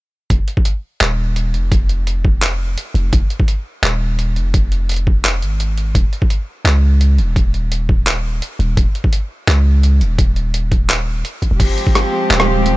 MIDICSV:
0, 0, Header, 1, 5, 480
1, 0, Start_track
1, 0, Key_signature, -4, "minor"
1, 0, Tempo, 352941
1, 413, Time_signature, 4, 2, 24, 8
1, 17366, End_track
2, 0, Start_track
2, 0, Title_t, "Cello section"
2, 0, Program_c, 0, 48
2, 15774, Note_on_c, 0, 67, 85
2, 15776, Note_on_c, 0, 53, 77
2, 15777, Note_on_c, 0, 60, 73
2, 17366, Note_off_c, 0, 53, 0
2, 17366, Note_off_c, 0, 60, 0
2, 17366, Note_off_c, 0, 67, 0
2, 17366, End_track
3, 0, Start_track
3, 0, Title_t, "Synth texture"
3, 0, Program_c, 1, 99
3, 15780, Note_on_c, 1, 56, 88
3, 17366, Note_off_c, 1, 56, 0
3, 17366, End_track
4, 0, Start_track
4, 0, Title_t, "808-style bass"
4, 0, Program_c, 2, 38
4, 410, Note_on_c, 2, 29, 102
4, 526, Note_off_c, 2, 29, 0
4, 1370, Note_on_c, 2, 27, 87
4, 2090, Note_on_c, 2, 29, 89
4, 2111, Note_off_c, 2, 27, 0
4, 3757, Note_off_c, 2, 29, 0
4, 4005, Note_on_c, 2, 29, 83
4, 4231, Note_off_c, 2, 29, 0
4, 4256, Note_on_c, 2, 29, 101
4, 4369, Note_off_c, 2, 29, 0
4, 5205, Note_on_c, 2, 27, 90
4, 5932, Note_on_c, 2, 29, 94
4, 5953, Note_off_c, 2, 27, 0
4, 7362, Note_on_c, 2, 32, 79
4, 7383, Note_off_c, 2, 29, 0
4, 8073, Note_off_c, 2, 32, 0
4, 8090, Note_on_c, 2, 27, 103
4, 8207, Note_off_c, 2, 27, 0
4, 9040, Note_on_c, 2, 37, 85
4, 9767, Note_on_c, 2, 27, 91
4, 9787, Note_off_c, 2, 37, 0
4, 11435, Note_off_c, 2, 27, 0
4, 11688, Note_on_c, 2, 27, 84
4, 11912, Note_off_c, 2, 27, 0
4, 11928, Note_on_c, 2, 27, 99
4, 12046, Note_off_c, 2, 27, 0
4, 12886, Note_on_c, 2, 37, 88
4, 13606, Note_on_c, 2, 27, 91
4, 13626, Note_off_c, 2, 37, 0
4, 15275, Note_off_c, 2, 27, 0
4, 15656, Note_on_c, 2, 27, 79
4, 15763, Note_off_c, 2, 27, 0
4, 15772, Note_on_c, 2, 29, 97
4, 15888, Note_off_c, 2, 29, 0
4, 16731, Note_on_c, 2, 27, 87
4, 17366, Note_off_c, 2, 27, 0
4, 17366, End_track
5, 0, Start_track
5, 0, Title_t, "Drums"
5, 411, Note_on_c, 9, 36, 114
5, 412, Note_on_c, 9, 42, 79
5, 547, Note_off_c, 9, 36, 0
5, 548, Note_off_c, 9, 42, 0
5, 649, Note_on_c, 9, 42, 38
5, 776, Note_on_c, 9, 36, 102
5, 785, Note_off_c, 9, 42, 0
5, 886, Note_on_c, 9, 42, 68
5, 912, Note_off_c, 9, 36, 0
5, 1022, Note_off_c, 9, 42, 0
5, 1370, Note_on_c, 9, 39, 106
5, 1370, Note_on_c, 9, 42, 75
5, 1506, Note_off_c, 9, 39, 0
5, 1506, Note_off_c, 9, 42, 0
5, 1852, Note_on_c, 9, 42, 64
5, 1988, Note_off_c, 9, 42, 0
5, 2095, Note_on_c, 9, 42, 36
5, 2231, Note_off_c, 9, 42, 0
5, 2334, Note_on_c, 9, 36, 114
5, 2335, Note_on_c, 9, 42, 78
5, 2470, Note_off_c, 9, 36, 0
5, 2471, Note_off_c, 9, 42, 0
5, 2575, Note_on_c, 9, 42, 38
5, 2711, Note_off_c, 9, 42, 0
5, 2815, Note_on_c, 9, 42, 68
5, 2951, Note_off_c, 9, 42, 0
5, 3054, Note_on_c, 9, 36, 106
5, 3190, Note_off_c, 9, 36, 0
5, 3295, Note_on_c, 9, 39, 112
5, 3295, Note_on_c, 9, 42, 76
5, 3431, Note_off_c, 9, 39, 0
5, 3431, Note_off_c, 9, 42, 0
5, 3775, Note_on_c, 9, 42, 66
5, 3911, Note_off_c, 9, 42, 0
5, 4014, Note_on_c, 9, 42, 37
5, 4150, Note_off_c, 9, 42, 0
5, 4253, Note_on_c, 9, 42, 77
5, 4254, Note_on_c, 9, 36, 121
5, 4389, Note_off_c, 9, 42, 0
5, 4390, Note_off_c, 9, 36, 0
5, 4492, Note_on_c, 9, 42, 37
5, 4618, Note_on_c, 9, 36, 105
5, 4628, Note_off_c, 9, 42, 0
5, 4733, Note_on_c, 9, 42, 67
5, 4754, Note_off_c, 9, 36, 0
5, 4869, Note_off_c, 9, 42, 0
5, 5213, Note_on_c, 9, 39, 112
5, 5213, Note_on_c, 9, 42, 72
5, 5349, Note_off_c, 9, 39, 0
5, 5349, Note_off_c, 9, 42, 0
5, 5695, Note_on_c, 9, 42, 64
5, 5831, Note_off_c, 9, 42, 0
5, 5934, Note_on_c, 9, 42, 38
5, 6070, Note_off_c, 9, 42, 0
5, 6174, Note_on_c, 9, 36, 117
5, 6174, Note_on_c, 9, 42, 71
5, 6310, Note_off_c, 9, 36, 0
5, 6310, Note_off_c, 9, 42, 0
5, 6417, Note_on_c, 9, 42, 35
5, 6553, Note_off_c, 9, 42, 0
5, 6655, Note_on_c, 9, 42, 60
5, 6686, Note_off_c, 9, 42, 0
5, 6686, Note_on_c, 9, 42, 51
5, 6719, Note_off_c, 9, 42, 0
5, 6719, Note_on_c, 9, 42, 43
5, 6751, Note_off_c, 9, 42, 0
5, 6751, Note_on_c, 9, 42, 36
5, 6887, Note_off_c, 9, 42, 0
5, 6895, Note_on_c, 9, 36, 104
5, 7031, Note_off_c, 9, 36, 0
5, 7137, Note_on_c, 9, 39, 108
5, 7137, Note_on_c, 9, 42, 72
5, 7273, Note_off_c, 9, 39, 0
5, 7273, Note_off_c, 9, 42, 0
5, 7377, Note_on_c, 9, 42, 36
5, 7513, Note_off_c, 9, 42, 0
5, 7616, Note_on_c, 9, 42, 62
5, 7752, Note_off_c, 9, 42, 0
5, 7855, Note_on_c, 9, 42, 36
5, 7991, Note_off_c, 9, 42, 0
5, 8093, Note_on_c, 9, 36, 111
5, 8094, Note_on_c, 9, 42, 73
5, 8229, Note_off_c, 9, 36, 0
5, 8230, Note_off_c, 9, 42, 0
5, 8333, Note_on_c, 9, 42, 34
5, 8457, Note_on_c, 9, 36, 101
5, 8469, Note_off_c, 9, 42, 0
5, 8572, Note_on_c, 9, 42, 63
5, 8593, Note_off_c, 9, 36, 0
5, 8708, Note_off_c, 9, 42, 0
5, 9051, Note_on_c, 9, 39, 111
5, 9051, Note_on_c, 9, 42, 68
5, 9187, Note_off_c, 9, 39, 0
5, 9187, Note_off_c, 9, 42, 0
5, 9531, Note_on_c, 9, 42, 58
5, 9667, Note_off_c, 9, 42, 0
5, 9771, Note_on_c, 9, 42, 34
5, 9907, Note_off_c, 9, 42, 0
5, 10011, Note_on_c, 9, 36, 115
5, 10013, Note_on_c, 9, 42, 70
5, 10147, Note_off_c, 9, 36, 0
5, 10149, Note_off_c, 9, 42, 0
5, 10255, Note_on_c, 9, 42, 33
5, 10391, Note_off_c, 9, 42, 0
5, 10495, Note_on_c, 9, 42, 64
5, 10631, Note_off_c, 9, 42, 0
5, 10731, Note_on_c, 9, 36, 93
5, 10867, Note_off_c, 9, 36, 0
5, 10973, Note_on_c, 9, 39, 106
5, 10973, Note_on_c, 9, 42, 70
5, 11109, Note_off_c, 9, 39, 0
5, 11109, Note_off_c, 9, 42, 0
5, 11453, Note_on_c, 9, 42, 59
5, 11589, Note_off_c, 9, 42, 0
5, 11694, Note_on_c, 9, 42, 33
5, 11830, Note_off_c, 9, 42, 0
5, 11931, Note_on_c, 9, 36, 109
5, 11932, Note_on_c, 9, 42, 71
5, 12067, Note_off_c, 9, 36, 0
5, 12068, Note_off_c, 9, 42, 0
5, 12173, Note_on_c, 9, 42, 34
5, 12295, Note_on_c, 9, 36, 98
5, 12309, Note_off_c, 9, 42, 0
5, 12412, Note_on_c, 9, 42, 68
5, 12431, Note_off_c, 9, 36, 0
5, 12548, Note_off_c, 9, 42, 0
5, 12892, Note_on_c, 9, 39, 106
5, 12892, Note_on_c, 9, 42, 74
5, 13028, Note_off_c, 9, 39, 0
5, 13028, Note_off_c, 9, 42, 0
5, 13374, Note_on_c, 9, 42, 59
5, 13510, Note_off_c, 9, 42, 0
5, 13615, Note_on_c, 9, 42, 37
5, 13751, Note_off_c, 9, 42, 0
5, 13851, Note_on_c, 9, 36, 114
5, 13854, Note_on_c, 9, 42, 75
5, 13987, Note_off_c, 9, 36, 0
5, 13990, Note_off_c, 9, 42, 0
5, 14093, Note_on_c, 9, 42, 35
5, 14229, Note_off_c, 9, 42, 0
5, 14335, Note_on_c, 9, 42, 68
5, 14471, Note_off_c, 9, 42, 0
5, 14573, Note_on_c, 9, 36, 94
5, 14576, Note_on_c, 9, 42, 37
5, 14709, Note_off_c, 9, 36, 0
5, 14712, Note_off_c, 9, 42, 0
5, 14819, Note_on_c, 9, 39, 112
5, 14819, Note_on_c, 9, 42, 76
5, 14955, Note_off_c, 9, 39, 0
5, 14955, Note_off_c, 9, 42, 0
5, 15297, Note_on_c, 9, 42, 66
5, 15433, Note_off_c, 9, 42, 0
5, 15532, Note_on_c, 9, 36, 56
5, 15537, Note_on_c, 9, 42, 35
5, 15668, Note_off_c, 9, 36, 0
5, 15673, Note_off_c, 9, 42, 0
5, 15774, Note_on_c, 9, 36, 113
5, 15776, Note_on_c, 9, 42, 79
5, 15776, Note_on_c, 9, 49, 73
5, 15910, Note_off_c, 9, 36, 0
5, 15912, Note_off_c, 9, 42, 0
5, 15912, Note_off_c, 9, 49, 0
5, 16016, Note_on_c, 9, 42, 39
5, 16139, Note_on_c, 9, 36, 104
5, 16152, Note_off_c, 9, 42, 0
5, 16257, Note_on_c, 9, 37, 57
5, 16257, Note_on_c, 9, 42, 71
5, 16275, Note_off_c, 9, 36, 0
5, 16393, Note_off_c, 9, 37, 0
5, 16393, Note_off_c, 9, 42, 0
5, 16736, Note_on_c, 9, 39, 112
5, 16736, Note_on_c, 9, 42, 77
5, 16861, Note_on_c, 9, 37, 77
5, 16872, Note_off_c, 9, 39, 0
5, 16872, Note_off_c, 9, 42, 0
5, 16997, Note_off_c, 9, 37, 0
5, 17215, Note_on_c, 9, 42, 65
5, 17351, Note_off_c, 9, 42, 0
5, 17366, End_track
0, 0, End_of_file